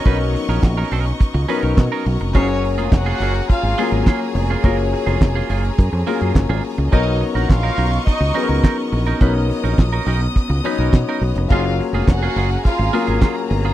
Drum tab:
HH |x-oxx-oxx-oxx-ox|x-oxx-oxx-oxx-ox|x-oxx-oxx-oxx-ox|x-oxx-oxx-oxx-ox|
CP |----x-------x---|----x-------x---|----x-------x---|----x-------x---|
SD |----o-------o---|----o-------o---|----o-------o---|----o-------o---|
BD |o---o---o---o---|o---o---o---o---|o---o---o---o---|o---o---o---o---|

HH |x-oxx-oxx-oxx-ox|x-oxx-oxx-oxx-ox|
CP |----x-------x---|----x-------x---|
SD |----o-------o---|----o-------o---|
BD |o---o---o---o---|o---o---o---o---|